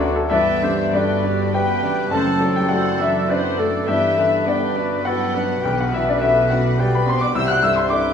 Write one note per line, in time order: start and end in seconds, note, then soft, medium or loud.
0.00 0.27 D2 medium
0.00 0.33 F#3 medium
0.00 0.30 A3 medium
0.00 0.25 D4 medium
0.16 0.31 A4 medium
0.29 2.08 G1 medium
0.29 2.07 G2 medium
0.29 2.08 G2 medium
0.29 0.88 E3 medium
0.29 0.60 B3 medium
0.29 0.96 B3 medium
0.29 0.60 D4 medium
0.29 0.89 E4 medium
0.29 0.60 B4 medium
0.29 0.61 D5 medium
0.29 0.96 E5 medium
0.29 0.88 E5 medium
0.29 0.89 E5 medium
0.29 0.59 G5 soft
0.62 1.11 D3 medium
0.62 0.94 D4 soft
0.62 0.95 G4 medium
0.62 0.94 G4 soft
0.62 0.97 C5 medium
0.62 0.93 D5 soft
0.92 1.53 D3 medium
0.92 1.41 G3 soft
0.92 1.26 A3 medium
0.92 1.23 B3 soft
0.92 1.22 D4 soft
0.92 2.12 F#4 soft
0.92 1.23 B4 soft
0.92 1.54 B4 medium
0.92 1.49 D5 medium
0.92 1.56 D5 medium
0.92 1.54 D5 medium
0.92 1.24 G5 soft
1.23 1.57 G3 medium
1.23 1.71 D4 soft
1.23 1.53 D4 soft
1.23 1.53 G4 soft
1.23 1.53 D5 soft
1.52 2.11 G3 medium
1.52 1.81 B3 soft
1.52 1.84 B3 medium
1.52 2.08 G4 medium
1.52 1.80 B4 soft
1.52 2.00 B4 soft
1.52 2.16 B4 medium
1.52 1.80 G5 soft
1.52 2.08 G5 medium
1.52 2.12 G5 medium
1.52 2.11 G5 medium
1.82 2.12 G3 soft
1.82 2.14 B3 medium
1.82 2.12 D4 soft
1.82 2.11 G4 medium
1.82 2.12 D5 soft
2.11 3.84 F#1 medium
2.11 3.83 F#2 medium
2.11 3.84 F#2 medium
2.11 2.54 A3 medium
2.11 2.72 C4 soft
2.11 2.39 C4 soft
2.11 3.84 E4 medium
2.11 2.52 A4 medium
2.11 3.31 A4 medium
2.11 2.39 C5 soft
2.11 2.40 F#5 soft
2.11 2.54 A5 medium
2.11 2.52 A5 medium
2.11 2.57 A5 medium
2.41 2.87 F#3 soft
2.41 2.70 D4 soft
2.41 2.70 A4 soft
2.41 2.70 D5 soft
2.54 2.69 G3 medium
2.54 2.69 G4 soft
2.54 2.69 G5 medium
2.54 2.72 G5 medium
2.54 2.69 G5 medium
2.69 2.98 F#3 medium
2.69 3.17 A3 soft
2.69 2.98 C4 soft
2.69 3.29 D4 soft
2.69 2.97 F#4 soft
2.69 2.99 C5 soft
2.69 2.96 F#5 medium
2.69 2.99 F#5 soft
2.69 2.99 F#5 medium
2.69 3.00 F#5 medium
2.98 3.28 E3 medium
2.98 3.28 D4 soft
2.98 3.30 D4 soft
2.98 3.27 E4 soft
2.98 3.28 A4 soft
2.98 3.30 D5 soft
2.98 3.28 E5 medium
2.98 3.32 E5 medium
2.98 3.27 E5 medium
3.26 3.86 D3 medium
3.26 3.59 B3 medium
3.26 3.55 C4 soft
3.26 3.60 B4 medium
3.26 3.56 C5 soft
3.26 3.76 C5 soft
3.26 3.88 D5 medium
3.26 3.90 D5 medium
3.26 3.84 D5 medium
3.31 3.85 D4 medium
3.31 3.57 F#5 soft
3.58 3.90 A3 medium
3.58 3.88 A3 soft
3.58 3.87 D4 soft
3.58 3.87 A4 soft
3.58 3.89 A4 soft
3.58 3.88 D5 soft
3.85 5.64 G1 medium
3.85 5.64 G2 medium
3.85 5.60 G2 medium
3.85 4.44 E3 medium
3.85 4.19 G3 medium
3.85 4.15 B3 soft
3.85 4.50 D4 soft
3.85 4.43 E4 medium
3.85 4.17 G4 soft
3.85 4.15 B4 soft
3.85 4.46 E5 medium
3.85 4.43 E5 medium
3.85 4.47 E5 medium
3.85 4.15 G5 soft
4.17 4.65 D3 soft
4.17 4.48 A3 medium
4.17 4.47 D4 soft
4.17 4.47 G4 soft
4.17 5.08 B4 medium
4.17 4.47 D5 soft
4.45 5.05 D3 medium
4.45 4.76 B3 soft
4.45 4.94 B3 soft
4.45 5.63 B3 medium
4.45 4.75 D4 soft
4.45 4.79 G4 soft
4.45 4.76 B4 soft
4.45 5.05 D5 medium
4.45 5.04 D5 medium
4.45 5.02 D5 soft
4.45 4.77 G5 soft
4.76 5.05 D4 soft
4.76 5.23 D4 soft
4.76 5.06 F#4 medium
4.76 5.05 G4 soft
4.76 5.05 D5 soft
5.04 5.63 F#3 medium
5.04 5.32 B3 soft
5.04 5.38 E4 medium
5.04 5.60 F#4 medium
5.04 5.36 A4 medium
5.04 5.32 B4 soft
5.04 5.53 B4 soft
5.04 5.37 F#5 medium
5.04 5.63 F#5 medium
5.04 5.59 F#5 medium
5.04 5.31 G5 soft
5.34 5.64 B3 soft
5.34 5.63 D4 soft
5.34 5.64 D4 medium
5.34 5.62 G4 soft
5.34 6.82 B4 medium
5.34 5.63 D5 soft
5.63 7.33 B1 medium
5.63 7.32 B2 medium
5.63 5.78 G3 medium
5.63 5.90 B3 soft
5.63 6.23 B3 soft
5.63 6.23 D4 soft
5.63 5.90 G4 soft
5.63 5.78 G4 soft
5.63 5.91 B4 soft
5.63 5.78 G5 medium
5.63 5.80 G5 medium
5.63 5.78 G5 medium
5.76 5.92 F#3 medium
5.76 5.91 F#5 soft
5.76 5.96 F#5 medium
5.80 5.94 F#4 soft
5.80 5.93 F#5 medium
5.90 6.39 B2 soft
5.90 6.07 E3 medium
5.90 6.22 D4 soft
5.90 6.22 B4 soft
5.90 6.21 D5 soft
5.90 6.06 E5 medium
5.90 6.07 E5 medium
5.94 6.07 E4 medium
5.94 6.10 E5 medium
6.04 6.21 D3 medium
6.04 6.20 D5 medium
6.08 6.22 D4 soft
6.08 6.26 D5 medium
6.08 6.22 D5 medium
6.19 6.50 E3 medium
6.19 6.80 A3 soft
6.19 6.50 B3 soft
6.19 6.68 B3 soft
6.19 6.49 E4 soft
6.19 7.09 F#4 soft
6.19 6.50 G4 soft
6.19 6.50 B4 soft
6.19 6.49 E5 medium
6.19 6.48 E5 medium
6.24 6.52 E5 medium
6.49 6.79 F#3 medium
6.49 6.78 D4 soft
6.49 6.97 D4 soft
6.49 6.77 F#4 soft
6.49 6.78 B4 soft
6.49 6.79 D5 soft
6.49 6.78 F#5 medium
6.49 6.77 F#5 medium
6.49 6.80 F#5 medium
6.78 6.93 G3 medium
6.78 7.16 G3 soft
6.78 7.05 B3 soft
6.78 7.05 G4 soft
6.78 6.93 G4 soft
6.78 6.95 B4 soft
6.78 7.05 B4 soft
6.78 7.17 D5 medium
6.78 6.96 G5 soft
6.78 6.93 G5 medium
6.78 6.92 G5 medium
6.94 7.08 B3 medium
6.94 7.08 B4 soft
6.94 7.08 B5 medium
6.94 7.10 B5 medium
6.94 7.08 B5 medium
7.06 7.35 B3 soft
7.06 7.22 C4 medium
7.06 7.36 D4 soft
7.06 7.35 B4 soft
7.06 7.35 D5 soft
7.06 7.22 C6 medium
7.06 7.24 C6 medium
7.06 7.22 C6 medium
7.10 7.22 C5 soft
7.21 7.36 D4 medium
7.21 7.35 D5 medium
7.21 7.34 D6 medium
7.21 7.36 D6 medium
7.21 7.39 D6 medium
7.34 8.13 C2 medium
7.34 8.13 C3 medium
7.34 7.61 G3 soft
7.34 7.87 G3 soft
7.34 7.49 E4 medium
7.34 8.13 E4 medium
7.34 7.61 G4 soft
7.34 7.95 C5 medium
7.34 7.49 E5 medium
7.34 7.61 G5 soft
7.34 7.49 E6 medium
7.34 7.50 E6 medium
7.34 7.51 E6 medium
7.48 7.62 F#4 medium
7.48 7.63 F#5 medium
7.48 7.62 F#6 medium
7.48 7.63 F#6 medium
7.48 7.66 F#6 medium
7.62 8.07 G2 soft
7.62 7.91 A3 soft
7.62 7.77 E4 medium
7.62 7.91 A4 soft
7.62 7.90 E5 soft
7.62 7.77 E5 medium
7.62 7.77 E6 medium
7.62 7.76 E6 medium
7.62 7.77 E6 medium
7.75 7.90 C4 medium
7.75 7.91 C5 soft
7.75 7.90 C6 medium
7.89 8.13 G3 soft
7.89 8.13 A3 soft
7.89 8.13 D4 medium
7.89 8.13 E4 soft
7.89 8.13 G4 soft
7.89 8.13 D5 soft
7.89 8.13 G5 soft
7.89 8.13 D6 medium
7.94 8.13 B4 medium